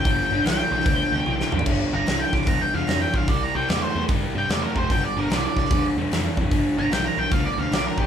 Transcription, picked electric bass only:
X:1
M:4/4
L:1/8
Q:"Swing" 1/4=149
K:C
V:1 name="Picked electric bass" clef=bass
G,,, G,,, B,,, B,,, D,, D,, B,,, B,,, | G,,, G,,, C,, C,, E,, E,, F,, B,,, | C,, C,, E,, E,, G,, G,, E,, F,,, | G,,, G,,, C,, C,, E,, E,, F,, F,, |
G,,, G,,, B,,, B,,, D,, D,, B,,, B,,, |]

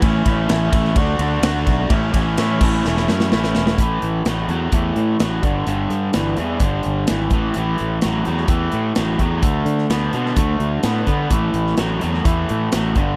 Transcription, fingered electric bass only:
X:1
M:4/4
L:1/8
Q:1/4=128
K:A
V:1 name="Fingered electric bass" clef=bass
A,,, A,,, A,,, A,,, D,, D,, D,, B,,, | A,,, A,,, A,, A,,, E,,, F,, A,,, E,,, | A,,, A,,, A,,, E,, E,, A,, A,,, =G,,, | =G,,, =G,, G,,, E,, G,,, G,,, ^G,,, A,,, |
A,,, A,,, A,,, E,, E,, A,, A,,, E,, | D,, D, D,, B,, D,, D,, A,, D, | A,,, A,,, A,,, E,, E,, A,, A,,, =G,,, |]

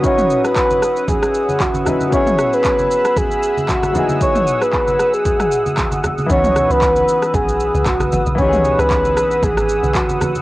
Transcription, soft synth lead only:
X:1
M:4/4
L:1/16
Q:"Swing 16ths" 1/4=115
K:C#m
V:1 name="Soft synth lead"
c3 B4- B G4 F3 z | c3 B4- B G4 F3 z | c3 B3 B G6- G z2 | c3 B4- B G4 F3 z |
c3 B4- B G4 F3 z |]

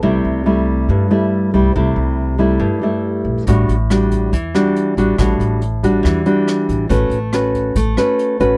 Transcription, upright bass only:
X:1
M:4/4
L:1/8
Q:1/4=140
K:Amix
V:1 name="Upright bass" clef=bass
=C,, C,,3 G,, z2 C,, | =C,, C,,3 G,, z2 _B,,, | A,,, A,,,3 E,, z2 A,,, | A,,, A,,,3 E,, z2 A,,, |
A,,, A,,,3 A,,, z2 A,,, |]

